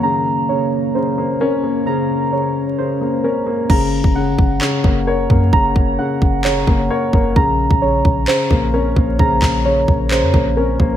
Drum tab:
CC |----------------|----------------|x---------------|----------------|
CP |----------------|----------------|--------x-------|--------x-------|
BD |----------------|----------------|o--o--o---o---o-|o-o---o---o---o-|

CC |----------------|----------------|
CP |--------x-------|--x-----x-------|
BD |o--o--o---o---o-|o-o---o---o---o-|